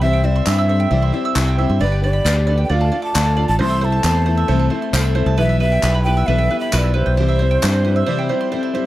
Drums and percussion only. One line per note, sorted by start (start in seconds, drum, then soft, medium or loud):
0.46 clap medium
0.46 tambourine medium
1.36 clap medium
1.36 tambourine medium
2.26 clap medium
2.26 tambourine medium
3.15 clap medium
3.15 tambourine medium
4.04 clap medium
4.04 tambourine medium
4.94 clap medium
4.94 tambourine loud
5.83 clap medium
5.83 tambourine medium
6.72 clap medium
6.72 tambourine loud
7.62 clap medium
7.62 tambourine medium